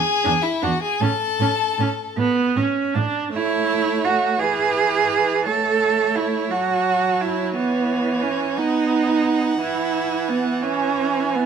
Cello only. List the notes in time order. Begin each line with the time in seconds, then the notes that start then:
0.26 E2
0.63 E2
1.01 A2
1.40 A2
1.78 A2
2.17 A2
2.56 A2
2.95 A2
3.32 E4
4.05 F#4
4.39 G#4
5.46 A4
6.16 E4
6.51 F#4
7.21 E4
7.55 B3
8.22 C#4
8.57 D#4
9.60 E4
10.28 B3
10.62 C#4
11.35 B3